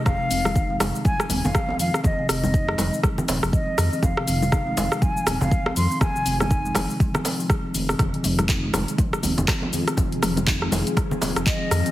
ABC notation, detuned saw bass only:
X:1
M:4/4
L:1/16
Q:"Swing 16ths" 1/4=121
K:Fm
V:1 name="Detuned saw bass" clef=bass
F,,, z F,,,4 F,,, z3 E,,, F,,, z2 F,, z | F,,, z F,,,4 F,,, z3 E,,, F,,, z2 F,, z | F,,, z F,,,4 F,,, z3 E,,, F,,, z2 F,, z | F,,, z F,,,4 F,,, z6 z F,,,2 |
F,,, z F,,,4 F,,, z3 E,,, F,,, z2 F,, z | F,,, z F,,,4 F,,, z3 E,,, F,,, z2 F,, z |]